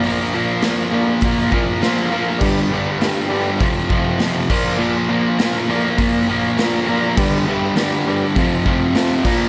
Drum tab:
CC |--------|x------x|--------|x------x|
HH |o-o-o-o-|--o-o-o-|--o-o-o-|--o-o-o-|
SD |--o---o-|--o---o-|--o---o-|--o---o-|
BD |----oo--|o---oo-o|----o---|o---oo-o|